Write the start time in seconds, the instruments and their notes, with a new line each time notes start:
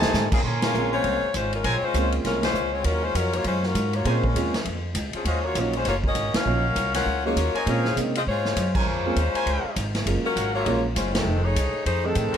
Already playing: trombone section C3 D#3 A3, trumpet section D#4 C5 G#5 A5
0.02 upright bass C2, snare
0.14 upright bass G#2, snare, hi-hat pedal
0.32 trombone section C#3 A#3 C4 G#4, muted upright bass stroke, kick, crash
0.43 upright bass A#2, trumpet section C#4 A#4 G#5 C6, kick
0.62 saxophone section G#3 C#4 F4 A#4, snare, ride
0.73 upright bass A#1, grand piano G#3 A#3 C4 C#4 F4, hi-hat pedal
0.93 saxophone section G#3 F4 C5 C#5
1.04 upright bass C2, kick, ride
1.23 muted upright bass stroke
1.34 upright bass G#1, saxophone section G#3 C#4 F4 C5, kick, hi-hat pedal, ride
1.53 saxophone section G#3 C#4 F4 A#4, ride
1.64 upright bass A#1, saxophone section G#3 C4 F4 C#5, trumpet section A#4 C5 C#5 G#5, kick, ride
1.82 saxophone section G#3 C#4 F4 C5, muted upright bass stroke
1.94 upright bass C#2, grand piano G#3 A#3 C4 C#4 F4, kick, hi-hat pedal, ride
2.12 ride
2.24 upright bass C2, saxophone section G#3 C#4 F4 A#4, kick, snare, ride
2.43 saxophone section G#3 C#4 F4 C5, snare, ride
2.53 upright bass C#2, hi-hat pedal
2.73 saxophone section G#3 C4 F4 C#5
2.84 upright bass D#2, saxophone section F#3 C#4 F4 A#4, kick, ride
3.03 saxophone section G#3 C#4 F4 C5
3.14 upright bass F2, saxophone section F#3 C#4 F4 A#4, kick, hi-hat pedal, ride
3.33 saxophone section A#3 F4 F#4 C#5, ride
3.44 upright bass F#2, saxophone section G#3 C#4 F4 C5, kick, ride
3.63 saxophone section F#3 C#4 F4 A#4, snare
3.74 upright bass G#2, kick, hi-hat pedal, ride
3.93 saxophone section A#3 F4 F#4 C#5, ride
4.04 upright bass A#2, grand piano G#3 A#3 C4 C#4 F4, saxophone section G#3 C#4 F4 C5, trumpet section A#4 C5 C#5 G#5, kick, ride
4.24 saxophone section G#3 C#4 F4 A#4, kick
4.35 upright bass D#2, grand piano G#3 A#3 C4 C#4 F4, kick, hi-hat pedal, ride
4.54 snare, ride
4.65 upright bass F2, kick, ride
4.95 upright bass C#2, kick, hi-hat pedal, ride
5.13 saxophone section F3 C4 C#4 G#4, muted upright bass stroke, ride
5.25 upright bass D#2, saxophone section G#3 C#4 F4 C5, trumpet section F#4 C#5 D#5 F5, kick, ride
5.45 saxophone section A#3 F4 F#4 C#5
5.55 upright bass A#1, grand piano F#3 A#3 C#4 D#4 F4, saxophone section F#3 C#4 F4 A#4, kick, hi-hat pedal, ride
5.73 ride
5.77 saxophone section G#3 C#4 F4 C5
5.85 upright bass F#1, saxophone section A#3 F4 F#4 C#5, kick, snare, ride
6.04 saxophone section C#4 F#4 A#4 D#5, kick
6.15 upright bass G#1, kick, hi-hat pedal, ride
6.34 saxophone section C#4 F#4 A#4 F5, muted upright bass stroke, snare, ride
6.45 upright bass A#1, grand piano F#3 A#3 C#4 D#4 F4
6.76 upright bass C2, kick, hi-hat pedal, ride
6.94 saxophone section C#4 F4 A#4 F#5, snare, ride
7.06 upright bass C#2, kick
7.25 grand piano F#3 A#3 C#4 D#4 G#4, saxophone section A#3 F4 F#4 C#5
7.36 upright bass D#2, kick, hi-hat pedal, ride
7.54 saxophone section F#4 A#4 D#5, trumpet section A#4 C5 C#5 G#5, muted upright bass stroke, ride
7.58 saxophone section C#4
7.66 upright bass A#2, grand piano G#3 A#3 C4 C#4 F4, saxophone section C#4 G#4 C5 F5, kick, ride
7.85 snare
7.96 upright bass C3, grand piano G#3 A#3 C4 C#4 D#4, kick, hi-hat pedal, ride
8.15 saxophone section C4 F4 G#4 D#5, ride
8.27 upright bass G#2, saxophone section G#3 F4 C5 C#5, kick
8.45 snare
8.56 upright bass F#2, kick, hi-hat pedal, ride
8.75 saxophone section G#3 C#4 F4 C5, trumpet section C#4 A#4 C5 G#5, kick, crash
8.86 upright bass F2
9.05 grand piano G#3 A#3 C4 C#4 F4
9.16 upright bass D#2, kick, hi-hat pedal, ride
9.34 trumpet section C#4 A#4 C5 G#5, muted upright bass stroke, ride
9.46 upright bass C#2, kick, ride
9.76 upright bass G#1, kick, hi-hat pedal, ride
9.95 snare, ride
10.06 upright bass F#1, grand piano F#3 G#3 A#3 C#4 F4, kick, ride
10.26 saxophone section F#3 C#4 F4 A#4
10.36 upright bass G#1, trumpet section A#4 C#5 F5 F#5, kick, hi-hat pedal, ride
10.55 saxophone section A#3 F4 F#4 C#5
10.66 upright bass A#1, grand piano F#3 G#3 A#3 C#4 F4, kick, ride
10.95 upright bass F#1, saxophone section G#3 C#4 F4 C5, kick, hi-hat pedal, ride
11.14 saxophone section D#3 G#3 C4 A4, snare, ride
11.25 upright bass F1
11.44 saxophone section A3 D#4 G#4 C#5
11.56 upright bass C2, kick, hi-hat pedal, ride
11.73 muted upright bass stroke
11.86 upright bass F2, saxophone section A3 D#4 G#4 C5, kick, ride
12.05 saxophone section D#3 G#3 C4 A4, grand piano F3 A3 C4 D#4 G#4
12.15 upright bass A2, kick, hi-hat pedal, ride
12.33 trumpet section A#4 C5 C#5 G#5, muted upright bass stroke, ride